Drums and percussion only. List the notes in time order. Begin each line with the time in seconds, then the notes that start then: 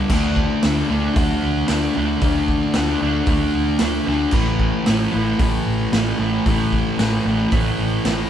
0.10 kick, crash
0.36 kick
0.63 snare, open hi-hat
1.16 kick, open hi-hat
1.68 snare, open hi-hat
2.21 kick, open hi-hat
2.48 kick
2.74 snare, open hi-hat
3.26 kick, open hi-hat
3.79 snare, open hi-hat
4.31 kick, crash
4.60 kick
4.86 snare, open hi-hat
5.39 kick, open hi-hat
5.93 snare, open hi-hat
6.46 kick, open hi-hat
6.73 kick
6.99 snare, open hi-hat
7.51 kick, open hi-hat
8.05 snare, open hi-hat